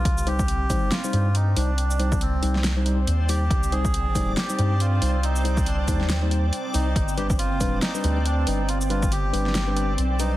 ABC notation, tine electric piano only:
X:1
M:4/4
L:1/16
Q:"Swing 16ths" 1/4=139
K:Cm
V:1 name="Tine electric piano"
z2 [G,Ec] z3 [G,Ec]2 z [G,Ec] [G,Ec] z3 [G,Ec] z | z2 [G,Ec] z3 [G,Ec]2 z [G,Ec] [G,Ec] z3 [G,Ec] z | z2 [G,Ec] z3 [G,Ec]2 z [G,Ec] [G,Ec] z3 [G,Ec] z | z2 [G,Ec] z3 [G,Ec]2 z [G,Ec] [G,Ec] z3 [G,Ec] z |
z2 [G,D=B] z3 [G,DB]2 z [G,DB] [G,DB] z3 [G,DB] z | z2 [G,D=B] z3 [G,DB]2 z [G,DB] [G,DB] z3 [G,DB] z |]